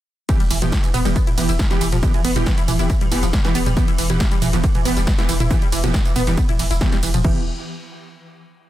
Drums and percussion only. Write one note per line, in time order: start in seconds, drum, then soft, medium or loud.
0.29 kick loud
0.29 closed hi-hat medium
0.29 ride medium
0.29 tambourine soft
0.40 closed hi-hat medium
0.40 ride medium
0.51 open hi-hat loud
0.51 ride medium
0.51 tambourine medium
0.62 mid tom medium
0.62 ride medium
0.62 tambourine soft
0.72 kick loud
0.72 snare loud
0.72 closed hi-hat medium
0.72 ride medium
0.72 tambourine soft
0.84 closed hi-hat medium
0.84 ride medium
0.84 tambourine soft
0.94 mid tom medium
0.94 open hi-hat medium
0.94 ride medium
0.94 tambourine medium
1.05 closed hi-hat medium
1.05 ride medium
1.05 tambourine soft
1.16 kick loud
1.16 closed hi-hat medium
1.16 ride medium
1.16 tambourine soft
1.27 closed hi-hat medium
1.27 mid tom medium
1.27 ride medium
1.38 open hi-hat loud
1.38 ride medium
1.38 tambourine medium
1.49 closed hi-hat medium
1.49 ride medium
1.49 tambourine soft
1.59 kick loud
1.59 snare loud
1.59 closed hi-hat medium
1.59 ride medium
1.59 tambourine soft
1.71 snare medium
1.71 closed hi-hat medium
1.71 ride medium
1.71 tambourine soft
1.81 open hi-hat medium
1.81 ride medium
1.81 tambourine medium
1.92 closed hi-hat medium
1.92 mid tom medium
1.92 ride medium
1.92 tambourine soft
2.03 kick loud
2.03 closed hi-hat loud
2.03 ride medium
2.03 tambourine soft
2.14 closed hi-hat medium
2.14 ride medium
2.25 open hi-hat loud
2.25 ride medium
2.25 tambourine medium
2.36 mid tom medium
2.36 ride medium
2.36 tambourine soft
2.46 kick loud
2.46 snare loud
2.46 closed hi-hat loud
2.46 ride medium
2.46 tambourine soft
2.58 closed hi-hat medium
2.58 ride medium
2.58 tambourine soft
2.68 mid tom medium
2.68 open hi-hat medium
2.68 ride medium
2.68 tambourine medium
2.79 closed hi-hat medium
2.79 ride medium
2.79 tambourine soft
2.90 kick loud
2.90 closed hi-hat medium
2.90 ride medium
2.90 tambourine soft
3.01 closed hi-hat medium
3.01 mid tom medium
3.01 ride medium
3.12 open hi-hat loud
3.12 ride medium
3.12 tambourine medium
3.23 closed hi-hat medium
3.23 ride medium
3.23 tambourine soft
3.33 kick loud
3.33 snare loud
3.33 closed hi-hat medium
3.33 ride medium
3.33 tambourine soft
3.45 snare medium
3.45 closed hi-hat medium
3.45 ride medium
3.45 tambourine soft
3.55 open hi-hat loud
3.55 ride medium
3.55 tambourine medium
3.66 closed hi-hat medium
3.66 mid tom medium
3.66 ride medium
3.66 tambourine soft
3.77 kick loud
3.77 closed hi-hat loud
3.77 ride medium
3.77 tambourine soft
3.88 closed hi-hat medium
3.88 ride medium
3.98 open hi-hat loud
3.98 ride medium
3.98 tambourine medium
4.10 closed hi-hat medium
4.10 mid tom medium
4.10 ride medium
4.10 tambourine soft
4.20 kick loud
4.20 snare loud
4.20 closed hi-hat loud
4.20 ride medium
4.20 tambourine soft
4.31 closed hi-hat medium
4.31 ride medium
4.31 tambourine soft
4.42 mid tom loud
4.42 open hi-hat loud
4.42 ride medium
4.42 tambourine medium
4.53 closed hi-hat medium
4.53 ride medium
4.53 tambourine soft
4.64 kick loud
4.64 closed hi-hat medium
4.64 ride medium
4.64 tambourine soft
4.75 closed hi-hat medium
4.75 mid tom medium
4.75 ride medium
4.85 open hi-hat loud
4.85 ride medium
4.85 tambourine medium
4.97 closed hi-hat medium
4.97 ride medium
4.97 tambourine soft
5.07 kick loud
5.07 snare loud
5.07 closed hi-hat medium
5.07 ride medium
5.07 tambourine soft
5.18 snare medium
5.18 closed hi-hat medium
5.18 ride soft
5.18 tambourine soft
5.29 open hi-hat loud
5.29 ride medium
5.29 tambourine medium
5.40 mid tom loud
5.40 ride medium
5.40 tambourine soft
5.51 kick loud
5.51 closed hi-hat medium
5.51 ride medium
5.51 tambourine soft
5.62 closed hi-hat medium
5.62 ride medium
5.72 open hi-hat loud
5.72 ride medium
5.72 tambourine medium
5.84 closed hi-hat medium
5.84 mid tom medium
5.84 ride medium
5.84 tambourine soft
5.94 kick loud
5.94 snare loud
5.94 closed hi-hat loud
5.94 ride medium
5.94 tambourine soft
6.05 closed hi-hat medium
6.05 ride medium
6.05 tambourine soft
6.16 mid tom loud
6.16 open hi-hat loud
6.16 ride medium
6.16 tambourine medium
6.27 closed hi-hat medium
6.27 ride medium
6.27 tambourine soft
6.38 kick loud
6.38 closed hi-hat medium
6.38 ride medium
6.38 tambourine soft
6.49 closed hi-hat medium
6.49 mid tom medium
6.49 ride medium
6.59 open hi-hat loud
6.59 ride medium
6.59 tambourine medium
6.71 closed hi-hat medium
6.71 ride medium
6.71 tambourine soft
6.81 kick loud
6.81 snare loud
6.81 closed hi-hat medium
6.81 tambourine soft
6.92 snare medium
6.92 closed hi-hat soft
6.92 ride medium
6.92 tambourine soft
7.03 open hi-hat loud
7.03 ride medium
7.03 tambourine medium
7.14 closed hi-hat medium
7.14 mid tom loud
7.14 ride medium
7.14 tambourine soft
7.24 kick loud
7.24 crash medium